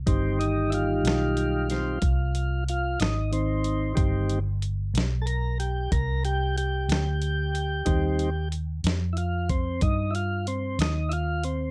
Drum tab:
HH |xxxxxxxxxxxx|xxxxxxxxxxxx|xxxxxxxxxxxx|
SD |---o-o---o--|---o-----o--|---o-----o--|
BD |o-----o-----|o-----o-----|o----oo-----|